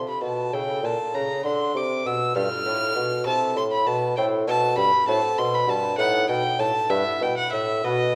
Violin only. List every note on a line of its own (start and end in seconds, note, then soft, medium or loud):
0.09 0.23 B5 medium
0.23 0.55 A5 medium
0.53 0.86 G5 medium
0.84 1.16 A5 medium
1.14 1.45 A#5 loud
1.46 1.78 C6 loud
1.77 2.08 D6 medium
2.07 2.36 E6 medium
2.37 3.25 F6 loud
3.27 3.56 A5 loud
3.57 3.63 C6 loud
3.72 3.88 B5 loud
3.87 4.16 A5 loud
4.17 4.25 G5 loud
4.48 4.77 A5 loud
4.78 5.07 B5 loud
5.08 5.40 A5 loud
5.38 5.56 C6 loud
5.54 5.70 B5 loud
5.69 5.98 A5 loud
5.98 6.28 F#5 loud
6.30 6.61 G5 loud
6.59 6.92 A5 loud
6.90 7.24 E5 loud
7.22 7.37 G5 loud
7.37 7.52 F#5 loud
7.52 7.86 E5 loud
7.84 8.15 D#5 loud